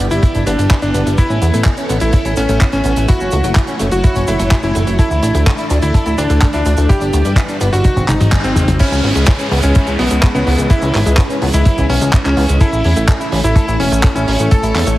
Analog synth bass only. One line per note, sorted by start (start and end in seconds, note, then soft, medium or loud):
0.11 0.20 G1 medium
0.36 0.44 G1 medium
0.47 0.56 G1 medium
0.58 0.68 G1 medium
0.82 0.91 G1 medium
0.94 1.03 G1 medium
1.06 1.15 G1 medium
1.30 1.39 A1 medium
1.42 1.51 E2 medium
1.54 1.63 A1 medium
1.90 1.99 A1 medium
2.01 2.11 A1 medium
2.25 2.34 A1 medium
2.37 2.46 A1 loud
2.49 2.58 A1 medium
2.73 2.82 A1 medium
2.85 2.94 A1 medium
2.97 3.06 A1 medium
3.21 3.30 F#1 medium
3.33 3.42 C#2 medium
3.44 3.54 F#1 medium
3.80 3.89 F#1 medium
3.92 4.01 F#1 medium
4.16 4.25 F#1 medium
4.28 4.37 F#1 medium
4.40 4.49 F#1 medium
4.63 4.72 F#1 medium
4.75 4.84 F#1 medium
4.87 4.96 F#1 medium
5.11 5.20 D2 medium
5.23 5.32 A1 medium
5.35 5.44 D2 medium
5.70 5.80 D2 medium
5.82 5.92 D2 medium
6.06 6.15 D2 medium
6.18 6.27 D2 loud
6.30 6.39 D2 medium
6.54 6.63 D2 medium
6.66 6.75 D2 medium
6.78 6.87 D2 medium
7.01 7.11 G1 medium
7.13 7.22 D2 medium
7.25 7.34 G1 medium
7.61 7.70 G1 loud
7.73 7.82 G1 medium
7.96 8.06 G#1 medium
8.09 8.18 G#1 medium
8.20 8.30 G#1 medium
8.44 8.53 G#1 medium
8.56 8.65 G#1 medium
8.68 8.77 G#1 medium
8.92 9.01 C#2 medium
9.04 9.13 G#1 medium
9.16 9.25 C#2 medium
9.51 9.61 C#2 loud
9.63 9.73 C#2 medium
9.87 9.96 C#2 medium
9.99 10.08 B1 loud
10.11 10.20 C#2 medium
10.35 10.44 C#2 medium
10.47 10.56 C#2 medium
10.59 10.68 C#2 medium
10.82 10.92 C#2 medium
10.94 11.04 G#1 medium
11.06 11.15 C#2 medium
11.42 11.51 C#2 loud
11.54 11.63 C#2 medium
11.78 11.87 C#2 medium
11.90 11.99 B1 medium
12.02 12.11 C#2 medium
12.25 12.35 C#2 medium
12.37 12.46 C#2 medium
12.49 12.58 C#2 medium
12.73 12.82 A1 medium
12.85 12.94 E2 medium
12.97 13.06 A1 medium
13.32 13.42 A1 loud
13.44 13.53 A1 medium
13.68 13.77 A1 medium
13.80 13.89 E1 loud
13.92 14.01 A1 medium
14.16 14.25 A1 medium
14.27 14.37 A1 medium
14.39 14.49 A1 medium
14.63 14.72 A1 medium
14.75 14.84 E2 medium
14.87 14.96 A1 medium